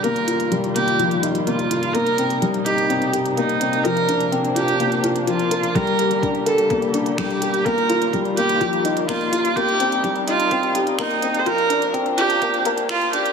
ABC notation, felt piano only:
X:1
M:4/4
L:1/8
Q:1/4=126
K:Cdor
V:1 name="Felt piano"
B, F G, B, F, E B, F | B, C G, E C G B, C | F, D C F B, F F, B | G, G D B B, D G, G |
B, F G, B, F, E B, F | B, C G, E C G B, C | F, D C F B, B, F D |]